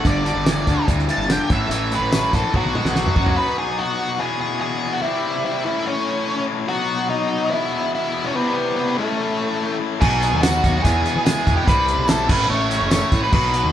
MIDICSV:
0, 0, Header, 1, 7, 480
1, 0, Start_track
1, 0, Tempo, 414938
1, 56, Time_signature, 4, 2, 24, 8
1, 15872, End_track
2, 0, Start_track
2, 0, Title_t, "Lead electric guitar"
2, 0, Program_c, 0, 29
2, 11584, Note_on_c, 0, 80, 89
2, 12028, Note_off_c, 0, 80, 0
2, 12049, Note_on_c, 0, 78, 82
2, 12500, Note_off_c, 0, 78, 0
2, 12514, Note_on_c, 0, 80, 90
2, 12971, Note_off_c, 0, 80, 0
2, 13015, Note_on_c, 0, 80, 84
2, 13351, Note_off_c, 0, 80, 0
2, 13394, Note_on_c, 0, 79, 87
2, 13498, Note_off_c, 0, 79, 0
2, 13501, Note_on_c, 0, 83, 95
2, 13945, Note_off_c, 0, 83, 0
2, 13977, Note_on_c, 0, 81, 89
2, 14200, Note_off_c, 0, 81, 0
2, 14223, Note_on_c, 0, 83, 88
2, 14442, Note_off_c, 0, 83, 0
2, 14467, Note_on_c, 0, 85, 99
2, 14907, Note_off_c, 0, 85, 0
2, 14952, Note_on_c, 0, 85, 94
2, 15278, Note_off_c, 0, 85, 0
2, 15305, Note_on_c, 0, 83, 87
2, 15411, Note_off_c, 0, 83, 0
2, 15428, Note_on_c, 0, 83, 103
2, 15867, Note_off_c, 0, 83, 0
2, 15872, End_track
3, 0, Start_track
3, 0, Title_t, "Lead electric guitar"
3, 0, Program_c, 1, 29
3, 82, Note_on_c, 1, 74, 102
3, 1002, Note_off_c, 1, 74, 0
3, 1276, Note_on_c, 1, 81, 111
3, 1500, Note_off_c, 1, 81, 0
3, 1521, Note_on_c, 1, 79, 93
3, 1743, Note_off_c, 1, 79, 0
3, 1763, Note_on_c, 1, 76, 101
3, 2217, Note_off_c, 1, 76, 0
3, 2258, Note_on_c, 1, 71, 100
3, 2705, Note_off_c, 1, 71, 0
3, 2717, Note_on_c, 1, 69, 104
3, 2941, Note_off_c, 1, 69, 0
3, 2962, Note_on_c, 1, 66, 107
3, 3882, Note_off_c, 1, 66, 0
3, 3894, Note_on_c, 1, 71, 95
3, 4139, Note_off_c, 1, 71, 0
3, 4144, Note_on_c, 1, 68, 94
3, 4379, Note_on_c, 1, 66, 88
3, 4389, Note_off_c, 1, 68, 0
3, 4856, Note_on_c, 1, 68, 96
3, 4874, Note_off_c, 1, 66, 0
3, 5086, Note_off_c, 1, 68, 0
3, 5100, Note_on_c, 1, 68, 98
3, 5319, Note_off_c, 1, 68, 0
3, 5333, Note_on_c, 1, 68, 99
3, 5706, Note_on_c, 1, 66, 88
3, 5707, Note_off_c, 1, 68, 0
3, 5801, Note_off_c, 1, 66, 0
3, 5806, Note_on_c, 1, 64, 101
3, 6297, Note_off_c, 1, 64, 0
3, 6310, Note_on_c, 1, 64, 91
3, 6530, Note_off_c, 1, 64, 0
3, 6544, Note_on_c, 1, 64, 94
3, 6779, Note_on_c, 1, 61, 91
3, 6789, Note_off_c, 1, 64, 0
3, 7453, Note_off_c, 1, 61, 0
3, 7733, Note_on_c, 1, 66, 106
3, 8206, Note_off_c, 1, 66, 0
3, 8210, Note_on_c, 1, 63, 95
3, 8683, Note_off_c, 1, 63, 0
3, 8687, Note_on_c, 1, 64, 95
3, 9140, Note_off_c, 1, 64, 0
3, 9197, Note_on_c, 1, 64, 97
3, 9539, Note_on_c, 1, 61, 89
3, 9559, Note_off_c, 1, 64, 0
3, 9663, Note_off_c, 1, 61, 0
3, 9663, Note_on_c, 1, 59, 94
3, 10123, Note_off_c, 1, 59, 0
3, 10137, Note_on_c, 1, 59, 98
3, 10385, Note_off_c, 1, 59, 0
3, 10391, Note_on_c, 1, 57, 93
3, 11299, Note_off_c, 1, 57, 0
3, 11581, Note_on_c, 1, 68, 104
3, 12061, Note_off_c, 1, 68, 0
3, 12065, Note_on_c, 1, 66, 103
3, 12535, Note_off_c, 1, 66, 0
3, 12540, Note_on_c, 1, 68, 98
3, 13009, Note_off_c, 1, 68, 0
3, 13023, Note_on_c, 1, 68, 96
3, 13369, Note_off_c, 1, 68, 0
3, 13374, Note_on_c, 1, 67, 96
3, 13487, Note_off_c, 1, 67, 0
3, 13507, Note_on_c, 1, 71, 115
3, 13986, Note_on_c, 1, 69, 106
3, 13996, Note_off_c, 1, 71, 0
3, 14219, Note_on_c, 1, 71, 104
3, 14228, Note_off_c, 1, 69, 0
3, 14451, Note_off_c, 1, 71, 0
3, 14456, Note_on_c, 1, 73, 112
3, 14930, Note_off_c, 1, 73, 0
3, 14943, Note_on_c, 1, 73, 117
3, 15296, Note_off_c, 1, 73, 0
3, 15300, Note_on_c, 1, 71, 104
3, 15405, Note_off_c, 1, 71, 0
3, 15419, Note_on_c, 1, 71, 110
3, 15872, Note_off_c, 1, 71, 0
3, 15872, End_track
4, 0, Start_track
4, 0, Title_t, "Distorted electric guitar"
4, 0, Program_c, 2, 30
4, 12062, Note_on_c, 2, 66, 80
4, 12292, Note_on_c, 2, 63, 72
4, 12535, Note_off_c, 2, 63, 0
4, 12540, Note_off_c, 2, 66, 0
4, 12771, Note_on_c, 2, 59, 70
4, 13016, Note_on_c, 2, 56, 75
4, 13257, Note_on_c, 2, 52, 76
4, 13494, Note_off_c, 2, 59, 0
4, 13496, Note_off_c, 2, 56, 0
4, 13497, Note_off_c, 2, 52, 0
4, 13968, Note_on_c, 2, 64, 85
4, 14212, Note_off_c, 2, 64, 0
4, 14442, Note_on_c, 2, 57, 78
4, 14679, Note_on_c, 2, 61, 71
4, 14903, Note_off_c, 2, 57, 0
4, 14917, Note_on_c, 2, 57, 80
4, 15162, Note_on_c, 2, 52, 83
4, 15405, Note_off_c, 2, 57, 0
4, 15406, Note_off_c, 2, 61, 0
4, 15408, Note_off_c, 2, 52, 0
4, 15872, End_track
5, 0, Start_track
5, 0, Title_t, "Distorted electric guitar"
5, 0, Program_c, 3, 30
5, 53, Note_on_c, 3, 43, 80
5, 61, Note_on_c, 3, 50, 96
5, 271, Note_off_c, 3, 43, 0
5, 274, Note_off_c, 3, 50, 0
5, 287, Note_on_c, 3, 43, 81
5, 290, Note_on_c, 3, 50, 91
5, 508, Note_off_c, 3, 43, 0
5, 509, Note_off_c, 3, 50, 0
5, 530, Note_on_c, 3, 43, 88
5, 540, Note_on_c, 3, 52, 81
5, 749, Note_off_c, 3, 43, 0
5, 754, Note_off_c, 3, 52, 0
5, 772, Note_on_c, 3, 43, 75
5, 775, Note_on_c, 3, 50, 88
5, 990, Note_off_c, 3, 43, 0
5, 992, Note_off_c, 3, 50, 0
5, 1011, Note_on_c, 3, 43, 81
5, 1018, Note_on_c, 3, 52, 93
5, 1230, Note_off_c, 3, 43, 0
5, 1233, Note_off_c, 3, 52, 0
5, 1251, Note_on_c, 3, 43, 75
5, 1258, Note_on_c, 3, 52, 85
5, 1470, Note_off_c, 3, 43, 0
5, 1474, Note_off_c, 3, 52, 0
5, 1490, Note_on_c, 3, 43, 86
5, 1491, Note_on_c, 3, 50, 96
5, 1710, Note_off_c, 3, 43, 0
5, 1710, Note_off_c, 3, 50, 0
5, 1742, Note_on_c, 3, 45, 79
5, 1745, Note_on_c, 3, 52, 83
5, 1956, Note_off_c, 3, 45, 0
5, 1958, Note_off_c, 3, 52, 0
5, 1977, Note_on_c, 3, 45, 84
5, 1982, Note_on_c, 3, 52, 91
5, 2194, Note_off_c, 3, 45, 0
5, 2196, Note_off_c, 3, 52, 0
5, 2225, Note_on_c, 3, 45, 77
5, 2233, Note_on_c, 3, 52, 87
5, 2438, Note_off_c, 3, 45, 0
5, 2442, Note_off_c, 3, 52, 0
5, 2460, Note_on_c, 3, 45, 76
5, 2467, Note_on_c, 3, 54, 94
5, 2675, Note_off_c, 3, 45, 0
5, 2679, Note_off_c, 3, 54, 0
5, 2710, Note_on_c, 3, 45, 72
5, 2713, Note_on_c, 3, 52, 89
5, 2921, Note_off_c, 3, 45, 0
5, 2922, Note_off_c, 3, 52, 0
5, 2944, Note_on_c, 3, 47, 86
5, 2948, Note_on_c, 3, 54, 91
5, 3158, Note_off_c, 3, 47, 0
5, 3160, Note_off_c, 3, 54, 0
5, 3179, Note_on_c, 3, 47, 79
5, 3186, Note_on_c, 3, 56, 90
5, 3395, Note_off_c, 3, 47, 0
5, 3399, Note_off_c, 3, 56, 0
5, 3413, Note_on_c, 3, 47, 93
5, 3419, Note_on_c, 3, 54, 100
5, 3632, Note_off_c, 3, 47, 0
5, 3636, Note_off_c, 3, 54, 0
5, 3655, Note_on_c, 3, 47, 71
5, 3658, Note_on_c, 3, 54, 75
5, 3863, Note_off_c, 3, 47, 0
5, 3875, Note_off_c, 3, 54, 0
5, 3877, Note_on_c, 3, 47, 92
5, 3892, Note_on_c, 3, 54, 91
5, 3903, Note_on_c, 3, 59, 90
5, 3915, Note_on_c, 3, 63, 108
5, 3921, Note_on_c, 3, 66, 106
5, 4834, Note_off_c, 3, 47, 0
5, 4837, Note_on_c, 3, 40, 86
5, 4842, Note_off_c, 3, 54, 0
5, 4847, Note_off_c, 3, 59, 0
5, 4849, Note_on_c, 3, 47, 99
5, 4853, Note_off_c, 3, 63, 0
5, 4856, Note_off_c, 3, 66, 0
5, 4857, Note_on_c, 3, 52, 87
5, 4864, Note_on_c, 3, 56, 99
5, 4872, Note_on_c, 3, 59, 104
5, 4883, Note_on_c, 3, 64, 99
5, 5794, Note_off_c, 3, 40, 0
5, 5797, Note_off_c, 3, 47, 0
5, 5801, Note_on_c, 3, 48, 94
5, 5804, Note_off_c, 3, 52, 0
5, 5808, Note_off_c, 3, 56, 0
5, 5811, Note_off_c, 3, 59, 0
5, 5816, Note_on_c, 3, 52, 88
5, 5817, Note_off_c, 3, 64, 0
5, 5827, Note_on_c, 3, 55, 97
5, 5838, Note_on_c, 3, 60, 98
5, 5848, Note_on_c, 3, 64, 107
5, 6516, Note_off_c, 3, 48, 0
5, 6523, Note_off_c, 3, 52, 0
5, 6529, Note_off_c, 3, 55, 0
5, 6532, Note_on_c, 3, 45, 95
5, 6535, Note_off_c, 3, 60, 0
5, 6539, Note_off_c, 3, 64, 0
5, 6550, Note_on_c, 3, 52, 104
5, 6559, Note_on_c, 3, 57, 102
5, 6566, Note_on_c, 3, 61, 112
5, 6578, Note_on_c, 3, 64, 108
5, 7715, Note_off_c, 3, 45, 0
5, 7719, Note_on_c, 3, 47, 101
5, 7731, Note_off_c, 3, 52, 0
5, 7735, Note_off_c, 3, 57, 0
5, 7736, Note_on_c, 3, 54, 97
5, 7739, Note_off_c, 3, 61, 0
5, 7745, Note_off_c, 3, 64, 0
5, 7747, Note_on_c, 3, 59, 95
5, 7757, Note_on_c, 3, 63, 98
5, 7767, Note_on_c, 3, 66, 102
5, 8675, Note_off_c, 3, 47, 0
5, 8684, Note_off_c, 3, 54, 0
5, 8689, Note_off_c, 3, 59, 0
5, 8690, Note_on_c, 3, 40, 93
5, 8694, Note_off_c, 3, 63, 0
5, 8699, Note_off_c, 3, 66, 0
5, 8705, Note_on_c, 3, 47, 96
5, 8713, Note_on_c, 3, 52, 98
5, 8721, Note_on_c, 3, 56, 90
5, 8732, Note_on_c, 3, 59, 105
5, 8738, Note_on_c, 3, 64, 113
5, 9641, Note_off_c, 3, 40, 0
5, 9642, Note_off_c, 3, 47, 0
5, 9646, Note_off_c, 3, 52, 0
5, 9647, Note_on_c, 3, 48, 100
5, 9656, Note_off_c, 3, 56, 0
5, 9660, Note_on_c, 3, 52, 106
5, 9661, Note_off_c, 3, 59, 0
5, 9665, Note_off_c, 3, 64, 0
5, 9672, Note_on_c, 3, 55, 95
5, 9681, Note_on_c, 3, 60, 102
5, 9692, Note_on_c, 3, 64, 112
5, 10359, Note_off_c, 3, 48, 0
5, 10365, Note_off_c, 3, 52, 0
5, 10367, Note_on_c, 3, 45, 106
5, 10372, Note_off_c, 3, 55, 0
5, 10376, Note_off_c, 3, 60, 0
5, 10381, Note_off_c, 3, 64, 0
5, 10383, Note_on_c, 3, 52, 104
5, 10397, Note_on_c, 3, 57, 102
5, 10401, Note_on_c, 3, 61, 113
5, 10414, Note_on_c, 3, 64, 102
5, 11559, Note_off_c, 3, 45, 0
5, 11566, Note_off_c, 3, 52, 0
5, 11567, Note_on_c, 3, 47, 94
5, 11573, Note_off_c, 3, 57, 0
5, 11575, Note_off_c, 3, 61, 0
5, 11582, Note_off_c, 3, 64, 0
5, 11586, Note_on_c, 3, 54, 96
5, 11595, Note_on_c, 3, 59, 104
5, 11604, Note_on_c, 3, 63, 105
5, 11613, Note_on_c, 3, 66, 105
5, 12518, Note_off_c, 3, 47, 0
5, 12528, Note_off_c, 3, 54, 0
5, 12528, Note_on_c, 3, 40, 98
5, 12532, Note_off_c, 3, 59, 0
5, 12537, Note_off_c, 3, 63, 0
5, 12541, Note_off_c, 3, 66, 0
5, 12541, Note_on_c, 3, 47, 88
5, 12550, Note_on_c, 3, 52, 93
5, 12558, Note_on_c, 3, 56, 91
5, 12568, Note_on_c, 3, 59, 94
5, 12573, Note_on_c, 3, 64, 105
5, 13472, Note_off_c, 3, 47, 0
5, 13477, Note_off_c, 3, 52, 0
5, 13477, Note_on_c, 3, 48, 88
5, 13478, Note_off_c, 3, 40, 0
5, 13491, Note_on_c, 3, 52, 100
5, 13493, Note_off_c, 3, 56, 0
5, 13498, Note_off_c, 3, 59, 0
5, 13500, Note_off_c, 3, 64, 0
5, 13503, Note_on_c, 3, 55, 96
5, 13513, Note_on_c, 3, 60, 102
5, 13529, Note_on_c, 3, 64, 110
5, 14192, Note_off_c, 3, 48, 0
5, 14196, Note_on_c, 3, 45, 105
5, 14199, Note_off_c, 3, 52, 0
5, 14204, Note_off_c, 3, 55, 0
5, 14209, Note_off_c, 3, 60, 0
5, 14211, Note_on_c, 3, 52, 100
5, 14218, Note_off_c, 3, 64, 0
5, 14221, Note_on_c, 3, 57, 102
5, 14230, Note_on_c, 3, 61, 108
5, 14244, Note_on_c, 3, 64, 120
5, 15389, Note_off_c, 3, 45, 0
5, 15396, Note_on_c, 3, 47, 105
5, 15397, Note_off_c, 3, 52, 0
5, 15402, Note_off_c, 3, 57, 0
5, 15406, Note_off_c, 3, 61, 0
5, 15408, Note_on_c, 3, 54, 106
5, 15413, Note_off_c, 3, 64, 0
5, 15423, Note_on_c, 3, 59, 96
5, 15433, Note_on_c, 3, 63, 101
5, 15440, Note_on_c, 3, 66, 107
5, 15872, Note_off_c, 3, 47, 0
5, 15872, Note_off_c, 3, 54, 0
5, 15872, Note_off_c, 3, 59, 0
5, 15872, Note_off_c, 3, 63, 0
5, 15872, Note_off_c, 3, 66, 0
5, 15872, End_track
6, 0, Start_track
6, 0, Title_t, "Fingered electric bass"
6, 0, Program_c, 4, 33
6, 52, Note_on_c, 4, 31, 96
6, 386, Note_off_c, 4, 31, 0
6, 408, Note_on_c, 4, 31, 86
6, 744, Note_off_c, 4, 31, 0
6, 777, Note_on_c, 4, 38, 84
6, 887, Note_off_c, 4, 38, 0
6, 1016, Note_on_c, 4, 38, 95
6, 1238, Note_off_c, 4, 38, 0
6, 1361, Note_on_c, 4, 31, 98
6, 1590, Note_off_c, 4, 31, 0
6, 1734, Note_on_c, 4, 33, 89
6, 1952, Note_off_c, 4, 33, 0
6, 1959, Note_on_c, 4, 33, 98
6, 2300, Note_off_c, 4, 33, 0
6, 2324, Note_on_c, 4, 33, 84
6, 2663, Note_off_c, 4, 33, 0
6, 2703, Note_on_c, 4, 34, 87
6, 2812, Note_off_c, 4, 34, 0
6, 2943, Note_on_c, 4, 35, 95
6, 3162, Note_off_c, 4, 35, 0
6, 3291, Note_on_c, 4, 35, 91
6, 3516, Note_off_c, 4, 35, 0
6, 3658, Note_on_c, 4, 42, 90
6, 3880, Note_off_c, 4, 42, 0
6, 11590, Note_on_c, 4, 35, 108
6, 11917, Note_off_c, 4, 35, 0
6, 11942, Note_on_c, 4, 39, 83
6, 12272, Note_off_c, 4, 39, 0
6, 12310, Note_on_c, 4, 39, 87
6, 12526, Note_off_c, 4, 39, 0
6, 12543, Note_on_c, 4, 40, 99
6, 12762, Note_off_c, 4, 40, 0
6, 12904, Note_on_c, 4, 52, 97
6, 13233, Note_off_c, 4, 52, 0
6, 13262, Note_on_c, 4, 40, 93
6, 13371, Note_off_c, 4, 40, 0
6, 13507, Note_on_c, 4, 36, 104
6, 13834, Note_off_c, 4, 36, 0
6, 13853, Note_on_c, 4, 35, 98
6, 14186, Note_off_c, 4, 35, 0
6, 14222, Note_on_c, 4, 33, 98
6, 14440, Note_off_c, 4, 33, 0
6, 14454, Note_on_c, 4, 33, 102
6, 14786, Note_off_c, 4, 33, 0
6, 14808, Note_on_c, 4, 30, 90
6, 15032, Note_off_c, 4, 30, 0
6, 15178, Note_on_c, 4, 45, 91
6, 15287, Note_off_c, 4, 45, 0
6, 15419, Note_on_c, 4, 35, 112
6, 15748, Note_off_c, 4, 35, 0
6, 15773, Note_on_c, 4, 39, 88
6, 15872, Note_off_c, 4, 39, 0
6, 15872, End_track
7, 0, Start_track
7, 0, Title_t, "Drums"
7, 57, Note_on_c, 9, 36, 114
7, 58, Note_on_c, 9, 42, 95
7, 173, Note_off_c, 9, 36, 0
7, 174, Note_off_c, 9, 42, 0
7, 303, Note_on_c, 9, 42, 67
7, 419, Note_off_c, 9, 42, 0
7, 537, Note_on_c, 9, 42, 91
7, 537, Note_on_c, 9, 54, 106
7, 538, Note_on_c, 9, 38, 114
7, 652, Note_off_c, 9, 42, 0
7, 652, Note_off_c, 9, 54, 0
7, 653, Note_off_c, 9, 38, 0
7, 777, Note_on_c, 9, 36, 86
7, 778, Note_on_c, 9, 42, 71
7, 893, Note_off_c, 9, 36, 0
7, 894, Note_off_c, 9, 42, 0
7, 1018, Note_on_c, 9, 36, 87
7, 1020, Note_on_c, 9, 42, 89
7, 1134, Note_off_c, 9, 36, 0
7, 1136, Note_off_c, 9, 42, 0
7, 1146, Note_on_c, 9, 38, 31
7, 1259, Note_on_c, 9, 42, 67
7, 1261, Note_off_c, 9, 38, 0
7, 1375, Note_off_c, 9, 42, 0
7, 1501, Note_on_c, 9, 42, 87
7, 1501, Note_on_c, 9, 54, 104
7, 1502, Note_on_c, 9, 38, 107
7, 1617, Note_off_c, 9, 42, 0
7, 1617, Note_off_c, 9, 54, 0
7, 1618, Note_off_c, 9, 38, 0
7, 1736, Note_on_c, 9, 42, 69
7, 1737, Note_on_c, 9, 36, 109
7, 1852, Note_off_c, 9, 36, 0
7, 1852, Note_off_c, 9, 42, 0
7, 1979, Note_on_c, 9, 42, 94
7, 2095, Note_off_c, 9, 42, 0
7, 2218, Note_on_c, 9, 42, 66
7, 2334, Note_off_c, 9, 42, 0
7, 2458, Note_on_c, 9, 42, 90
7, 2458, Note_on_c, 9, 54, 112
7, 2459, Note_on_c, 9, 38, 107
7, 2574, Note_off_c, 9, 42, 0
7, 2574, Note_off_c, 9, 54, 0
7, 2575, Note_off_c, 9, 38, 0
7, 2699, Note_on_c, 9, 36, 87
7, 2702, Note_on_c, 9, 42, 73
7, 2814, Note_off_c, 9, 36, 0
7, 2817, Note_off_c, 9, 42, 0
7, 2938, Note_on_c, 9, 36, 88
7, 2941, Note_on_c, 9, 48, 60
7, 3054, Note_off_c, 9, 36, 0
7, 3057, Note_off_c, 9, 48, 0
7, 3065, Note_on_c, 9, 48, 55
7, 3180, Note_off_c, 9, 48, 0
7, 3184, Note_on_c, 9, 47, 74
7, 3300, Note_off_c, 9, 47, 0
7, 3302, Note_on_c, 9, 38, 66
7, 3417, Note_off_c, 9, 38, 0
7, 3419, Note_on_c, 9, 38, 83
7, 3535, Note_off_c, 9, 38, 0
7, 3542, Note_on_c, 9, 45, 75
7, 3657, Note_off_c, 9, 45, 0
7, 3658, Note_on_c, 9, 36, 98
7, 3773, Note_off_c, 9, 36, 0
7, 3775, Note_on_c, 9, 43, 88
7, 3891, Note_off_c, 9, 43, 0
7, 11589, Note_on_c, 9, 36, 115
7, 11592, Note_on_c, 9, 49, 111
7, 11704, Note_off_c, 9, 36, 0
7, 11708, Note_off_c, 9, 49, 0
7, 11829, Note_on_c, 9, 42, 86
7, 11945, Note_off_c, 9, 42, 0
7, 12066, Note_on_c, 9, 54, 98
7, 12069, Note_off_c, 9, 54, 0
7, 12069, Note_on_c, 9, 42, 117
7, 12069, Note_on_c, 9, 54, 117
7, 12070, Note_on_c, 9, 38, 120
7, 12185, Note_off_c, 9, 42, 0
7, 12185, Note_off_c, 9, 54, 0
7, 12186, Note_off_c, 9, 38, 0
7, 12308, Note_on_c, 9, 36, 84
7, 12309, Note_on_c, 9, 42, 87
7, 12423, Note_off_c, 9, 36, 0
7, 12425, Note_off_c, 9, 42, 0
7, 12548, Note_on_c, 9, 36, 95
7, 12550, Note_on_c, 9, 42, 114
7, 12664, Note_off_c, 9, 36, 0
7, 12666, Note_off_c, 9, 42, 0
7, 12790, Note_on_c, 9, 42, 80
7, 12906, Note_off_c, 9, 42, 0
7, 13024, Note_on_c, 9, 54, 100
7, 13031, Note_off_c, 9, 54, 0
7, 13031, Note_on_c, 9, 42, 112
7, 13031, Note_on_c, 9, 54, 124
7, 13033, Note_on_c, 9, 38, 116
7, 13147, Note_off_c, 9, 42, 0
7, 13147, Note_off_c, 9, 54, 0
7, 13148, Note_off_c, 9, 38, 0
7, 13268, Note_on_c, 9, 36, 97
7, 13275, Note_on_c, 9, 42, 82
7, 13384, Note_off_c, 9, 36, 0
7, 13390, Note_off_c, 9, 42, 0
7, 13507, Note_on_c, 9, 36, 117
7, 13512, Note_on_c, 9, 42, 105
7, 13622, Note_off_c, 9, 36, 0
7, 13628, Note_off_c, 9, 42, 0
7, 13747, Note_on_c, 9, 42, 75
7, 13863, Note_off_c, 9, 42, 0
7, 13969, Note_on_c, 9, 54, 100
7, 13983, Note_off_c, 9, 54, 0
7, 13983, Note_on_c, 9, 42, 111
7, 13983, Note_on_c, 9, 54, 120
7, 13984, Note_on_c, 9, 38, 111
7, 14099, Note_off_c, 9, 42, 0
7, 14099, Note_off_c, 9, 54, 0
7, 14100, Note_off_c, 9, 38, 0
7, 14222, Note_on_c, 9, 36, 112
7, 14223, Note_on_c, 9, 57, 113
7, 14337, Note_off_c, 9, 36, 0
7, 14338, Note_off_c, 9, 57, 0
7, 14702, Note_on_c, 9, 42, 81
7, 14818, Note_off_c, 9, 42, 0
7, 14931, Note_on_c, 9, 54, 108
7, 14939, Note_off_c, 9, 54, 0
7, 14939, Note_on_c, 9, 42, 110
7, 14939, Note_on_c, 9, 54, 119
7, 14940, Note_on_c, 9, 38, 116
7, 15054, Note_off_c, 9, 42, 0
7, 15054, Note_off_c, 9, 54, 0
7, 15056, Note_off_c, 9, 38, 0
7, 15177, Note_on_c, 9, 36, 95
7, 15177, Note_on_c, 9, 42, 87
7, 15293, Note_off_c, 9, 36, 0
7, 15293, Note_off_c, 9, 42, 0
7, 15416, Note_on_c, 9, 49, 106
7, 15417, Note_on_c, 9, 36, 115
7, 15531, Note_off_c, 9, 49, 0
7, 15533, Note_off_c, 9, 36, 0
7, 15661, Note_on_c, 9, 42, 86
7, 15777, Note_off_c, 9, 42, 0
7, 15872, End_track
0, 0, End_of_file